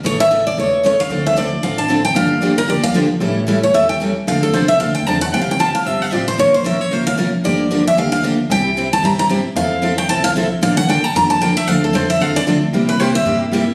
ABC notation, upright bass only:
X:1
M:4/4
L:1/8
Q:"Swing" 1/4=227
K:Dm
V:1 name="Upright bass" clef=bass
A,,,4 E,,,4 | D,,4 A,,,4 | G,,,4 D,,4 | A,,,4 E,,,4 |
D,,2 C,,2 D,,2 E,,2 | [K:F] F,,,4 G,,,2 A,,,2 | B,,,4 F,,,4 | G,,,4 D,,4 |
C,,4 G,,4 | F,,4 C,,4 | B,,,4 F,,4 | D,,2 F,,2 E,,2 D,,2 |
C,,4 G,,4 |]